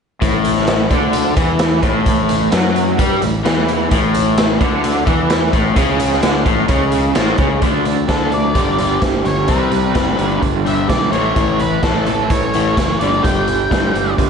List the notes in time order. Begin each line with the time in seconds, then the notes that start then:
0.21 A1 A2, kick, closed hi-hat
0.44 closed hi-hat
0.56 snare
0.67 snare, closed hi-hat
0.90 D2 D3, kick, closed hi-hat
1.13 closed hi-hat
1.37 E2 E3, kick, closed hi-hat
1.59 snare, closed hi-hat
1.83 A1 A2, kick, closed hi-hat
2.06 kick, closed hi-hat
2.29 closed hi-hat
2.52 F#2 F#3, snare, closed hi-hat
2.76 closed hi-hat
2.98 G2 G3, kick, closed hi-hat
3.21 A1 A2, closed hi-hat
3.44 E2 E3, snare, closed hi-hat
3.69 closed hi-hat
3.91 A1 A2, kick, closed hi-hat
4.14 closed hi-hat
4.38 snare, closed hi-hat
4.60 D2 D3, kick, closed hi-hat
4.84 closed hi-hat
5.06 E2 E3, kick, closed hi-hat
5.30 snare, closed hi-hat
5.53 A1 A2, kick, closed hi-hat
5.76 C#2 C#3, kick, closed hi-hat
6.00 closed hi-hat
6.12 snare
6.23 D2 D3, snare, closed hi-hat
6.45 A1 A2, kick, closed hi-hat
6.68 C#2 C#3, kick, closed hi-hat
6.92 closed hi-hat
7.15 A1 A2, snare, closed hi-hat
7.38 C#2 C#3, kick, closed hi-hat
7.62 D2 D3 A3 D4, kick, closed hi-hat
7.85 D3 A3, closed hi-hat
8.08 D2 D3 A3 D4 A4, kick, snare, closed hi-hat
8.31 D3 A3 D5, closed hi-hat
8.54 G1 G2 D3 G3, kick, closed hi-hat
8.78 G2 D3 G3, closed hi-hat
9.02 G1 G2 D3, kick, snare, closed hi-hat
9.24 G1 G2 D3 C#5, snare, closed hi-hat
9.47 C2 C3 G3 C4 B4, kick, closed hi-hat
9.72 C3 G3, closed hi-hat
9.94 F#1 C3 G3 C4, kick, snare, closed hi-hat
10.17 G1 G2 D3 G3, closed hi-hat
10.41 G1 G2 D3, kick, closed hi-hat
10.65 G2 D3 G3 E5, closed hi-hat
10.88 B1 G2 D3 D5, kick, snare, closed hi-hat
11.12 A1 A2 E3 A3 C#5, closed hi-hat
11.36 A1 A2 E3 A3, kick, closed hi-hat
11.60 A2 E3 B4, closed hi-hat
11.83 A1 A2 E3 A3 A4, kick, snare, closed hi-hat
12.06 A2 E3 A3, closed hi-hat
12.30 A1 A2 E3 C#5, kick, closed hi-hat
12.54 A2 E3 A3, closed hi-hat
12.77 F#1 A2 E3, kick, snare, closed hi-hat
12.99 G1 G2 D3 D5, closed hi-hat
13.03 G3
13.23 G1 G2 D3 G3 G5, kick, closed hi-hat
13.48 G2 D3, closed hi-hat
13.71 G1 G2 D3 G3, kick, snare, closed hi-hat
13.94 G1 G2 D3 G3, closed hi-hat
14.18 G1 G2 D3, kick, closed hi-hat